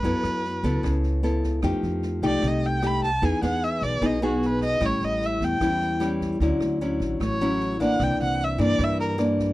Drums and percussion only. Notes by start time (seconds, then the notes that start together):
0.03 kick, snare
0.23 cross-stick, snare
0.44 snare
0.63 kick, snare
0.83 kick, cross-stick, snare
1.03 snare
1.23 snare
1.43 kick, snare
1.62 kick, cross-stick, snare
1.83 snare
2.02 snare
2.22 kick, snare
2.42 kick, cross-stick, snare
2.62 snare
2.82 cross-stick, snare
3.02 kick, snare
3.22 kick, snare
3.43 cross-stick, snare
3.62 snare
3.82 kick, snare
4.02 kick, cross-stick, snare
4.22 snare
4.41 snare
4.61 kick, snare
4.80 kick, cross-stick, snare
5.01 snare
5.21 snare
5.41 kick, snare
5.61 kick, cross-stick, snare
5.81 snare
6.01 cross-stick, snare
6.21 kick, snare
6.40 kick, snare
6.60 cross-stick, snare
6.80 snare
7.00 kick, snare
7.20 kick, cross-stick, snare
7.40 snare
7.60 snare
7.80 kick, snare
8.00 kick, cross-stick, snare
8.19 snare
8.39 snare
8.59 kick, snare
8.79 kick, cross-stick, snare
8.99 snare
9.19 cross-stick, snare
9.39 kick, snare